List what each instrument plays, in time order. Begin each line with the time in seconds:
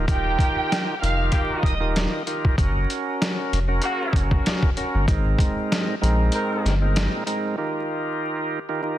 0.07 sub bass D#1, tonewheel organ D#3 D#4 F4 G4 A#4, violin section G4 G5, kick, closed hi-hat
0.39 kick, closed hi-hat
0.72 snare, closed hi-hat
1.01 sub bass F1, tonewheel organ D#3 D#4 F4 G4 A#4, violin section F5 F6, closed hi-hat
1.32 horn section D#3 A#3 G4, kick, closed hi-hat
1.62 sub bass D#1, violin section D#5 D#6, kick
1.66 closed hi-hat
1.80 tonewheel organ D#3 D#4 F4 G4 A#4
1.96 snare, closed hi-hat
2.27 tonewheel organ D#3 D#4 F4 G4 A#4, closed hi-hat
2.45 kick
2.58 sub bass F#1, tonewheel organ C#4 F#4 A#4, kick, closed hi-hat
2.90 closed hi-hat
3.22 snare, closed hi-hat
3.53 sub bass F1, closed hi-hat
3.68 tonewheel organ C#4 F#4 A#4
3.82 horn section C#3 A#3 F#4, tonewheel organ C#4 F#4, closed hi-hat
4.13 sub bass F#1, kick, closed hi-hat
4.31 kick
4.46 snare, closed hi-hat
4.62 kick
4.77 tonewheel organ C#4 F#4 A#4, closed hi-hat
4.94 sub bass G1
5.08 sub bass G#1, tonewheel organ G#2 G#3 C4 D#4 A#4, kick, closed hi-hat
5.39 kick, closed hi-hat
5.72 snare, closed hi-hat
6.01 sub bass A#1, tonewheel organ G#2 G#3 C4 D#4 A#4, closed hi-hat
6.32 horn section D#3 C4 A#4, closed hi-hat
6.65 sub bass G1, snare, closed hi-hat
6.81 tonewheel organ A#2 G#3 C4 D#4 A#4
6.96 snare, closed hi-hat
7.26 tonewheel organ G#2 G#3 C4 D#4 A#4, closed hi-hat
7.58 tonewheel organ D#3 D#4 F4 G4 A#4
8.69 tonewheel organ D#3 D#4 F4 G4 A#4
8.82 tonewheel organ D#3 D#4 F4 G4 A#4